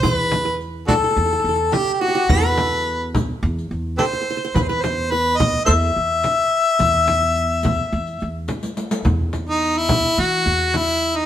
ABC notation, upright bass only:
X:1
M:4/4
L:1/8
Q:1/4=106
K:none
V:1 name="Upright bass" clef=bass
E,,4 E,, E,, z2 | E,,4 E,, E,, z2 | E,,4 E,, E,, z2 | E,,4 E,, E,, z2 |
E,,4 E, E,,3 |]